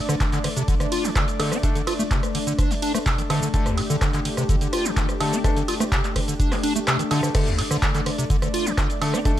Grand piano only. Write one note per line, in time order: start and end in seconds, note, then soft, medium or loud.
1.40 1.52 A3 medium
1.40 1.52 D4 medium
1.40 1.52 A4 medium
1.63 1.76 A3 medium
1.63 1.76 D4 medium
1.63 1.76 A4 medium
3.30 3.43 A3 medium
3.30 3.43 D4 medium
3.30 3.43 A4 loud
3.54 3.67 A3 medium
3.54 3.67 D4 medium
3.54 3.67 A4 medium
5.21 5.33 A3 medium
5.21 5.33 D4 medium
5.21 5.33 A4 medium
5.44 5.57 A3 medium
5.44 5.57 D4 medium
5.44 5.57 A4 medium
7.11 7.31 A3 medium
7.11 7.31 D4 medium
7.11 7.31 A4 medium
7.35 7.47 A3 medium
7.35 7.47 D4 medium
7.35 7.47 A4 medium
9.02 9.14 A3 medium
9.02 9.14 D4 medium
9.02 9.14 A4 medium
9.25 9.38 A3 medium
9.25 9.38 D4 medium
9.25 9.38 A4 medium